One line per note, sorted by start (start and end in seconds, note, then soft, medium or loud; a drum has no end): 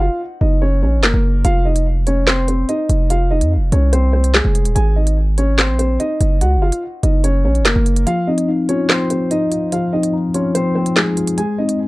0.00 0.20 F4 medium
0.00 0.19 F5 medium
0.41 0.84 F#1 loud
0.41 0.61 D#4 medium
0.41 0.61 D#5 medium
0.62 0.82 C#4 medium
0.62 0.81 C#5 medium
0.83 1.00 A#1 loud
0.83 1.02 C#4 medium
0.83 1.02 C#5 medium
0.98 1.13 F#1 loud
1.03 1.42 A#3 medium
1.03 1.42 A#4 medium
1.03 snare loud
1.03 clap medium
1.14 1.43 F#1 loud
1.45 2.65 F1 loud
1.45 1.64 F4 medium
1.45 1.64 F5 loud
1.45 closed hi-hat medium
1.65 1.85 D#4 medium
1.65 1.85 D#5 medium
1.76 closed hi-hat medium
2.07 2.27 C#4 medium
2.07 2.26 C#5 medium
2.07 closed hi-hat medium
2.27 2.47 C4 medium
2.27 2.47 C5 medium
2.27 snare loud
2.27 clap medium
2.48 2.68 C4 medium
2.48 2.68 C5 medium
2.48 closed hi-hat medium
2.69 3.08 D#4 medium
2.69 3.08 D#5 medium
2.69 closed hi-hat medium
2.89 3.43 F1 loud
2.89 closed hi-hat medium
3.10 3.30 F4 medium
3.10 3.30 F5 medium
3.10 closed hi-hat medium
3.31 3.51 D#4 medium
3.31 3.50 D#5 medium
3.41 3.58 F2 loud
3.41 closed hi-hat medium
3.57 3.71 F1 loud
3.72 4.42 C2 loud
3.72 3.92 C#4 medium
3.72 3.92 C#5 medium
3.72 closed hi-hat medium
3.93 4.12 C4 medium
3.93 4.12 C5 medium
3.93 closed hi-hat medium
4.13 4.33 C4 medium
4.13 4.33 C5 medium
4.24 closed hi-hat medium
4.34 4.74 G#3 medium
4.34 4.73 G#4 medium
4.34 snare loud
4.34 clap medium
4.45 4.67 F1 loud
4.55 closed hi-hat medium
4.65 4.75 D#1 loud
4.65 closed hi-hat medium
4.75 5.70 G#1 loud
4.75 4.95 G#4 medium
4.75 4.95 G#5 loud
4.75 closed hi-hat medium
4.96 5.16 D#4 medium
4.96 5.16 D#5 medium
5.07 closed hi-hat medium
5.38 5.58 C#4 medium
5.38 5.57 C#5 medium
5.38 closed hi-hat medium
5.58 5.78 C4 medium
5.58 5.78 C5 medium
5.58 snare loud
5.58 clap medium
5.69 5.98 A#1 loud
5.79 5.99 C4 medium
5.79 5.98 C5 medium
5.79 closed hi-hat medium
6.00 6.39 D#4 medium
6.00 6.39 D#5 medium
6.00 closed hi-hat medium
6.21 6.43 F#1 loud
6.21 closed hi-hat medium
6.41 6.58 C#2 loud
6.41 6.61 F#4 medium
6.41 6.61 F#5 medium
6.41 closed hi-hat medium
6.57 6.71 F#1 loud
6.62 6.82 F4 medium
6.62 6.81 F5 medium
6.72 closed hi-hat medium
7.03 7.46 F#1 loud
7.03 7.23 D#4 medium
7.03 7.23 D#5 medium
7.03 closed hi-hat medium
7.24 7.44 C#4 medium
7.24 7.43 C#5 medium
7.24 closed hi-hat medium
7.45 7.62 A#1 loud
7.45 7.64 C#4 medium
7.45 7.64 C#5 medium
7.55 closed hi-hat soft
7.60 7.75 F#1 loud
7.65 8.05 A#3 medium
7.65 8.04 A#4 medium
7.65 snare loud
7.65 clap medium
7.65 closed hi-hat medium
7.76 8.06 F#1 loud
7.86 closed hi-hat medium
7.96 closed hi-hat medium
8.07 8.88 F3 medium
8.07 8.26 F4 medium
8.07 8.26 F5 loud
8.07 closed hi-hat medium
8.27 9.31 C4 medium
8.27 8.47 D#4 medium
8.27 8.47 D#5 medium
8.38 closed hi-hat medium
8.48 9.30 D#4 medium
8.69 8.89 C#4 medium
8.69 9.50 F4 medium
8.69 8.88 C#5 medium
8.69 closed hi-hat medium
8.89 9.71 F3 medium
8.89 9.09 C4 medium
8.89 9.09 C5 medium
8.89 snare loud
8.89 clap medium
9.10 9.30 C4 medium
9.10 9.30 C5 medium
9.10 closed hi-hat medium
9.31 10.12 D#4 loud
9.31 9.70 D#4 medium
9.31 9.70 D#5 medium
9.31 closed hi-hat medium
9.51 10.34 F4 medium
9.51 closed hi-hat medium
9.72 10.55 F3 loud
9.72 9.92 F4 medium
9.72 9.92 F5 medium
9.72 closed hi-hat medium
9.93 10.96 C4 medium
9.93 10.13 D#4 medium
9.93 10.12 D#5 medium
10.03 closed hi-hat medium
10.14 10.95 D#4 medium
10.34 10.54 C#4 medium
10.34 11.16 F4 loud
10.34 10.54 C#5 medium
10.34 closed hi-hat medium
10.55 11.38 F3 medium
10.55 10.75 C4 medium
10.55 10.74 C5 medium
10.55 closed hi-hat medium
10.75 10.95 C4 medium
10.75 10.95 C5 medium
10.86 closed hi-hat medium
10.96 11.36 G#3 medium
10.96 11.38 D#4 medium
10.96 11.35 G#4 medium
10.96 snare loud
10.96 clap medium
11.17 11.38 F4 medium
11.17 closed hi-hat medium
11.27 closed hi-hat medium
11.38 11.88 G#3 medium
11.38 11.57 G#4 medium
11.38 11.57 G#5 loud
11.38 closed hi-hat medium
11.58 11.88 C4 medium
11.58 11.78 D#4 medium
11.58 11.78 D#5 medium
11.69 closed hi-hat medium
11.79 11.88 D#4 medium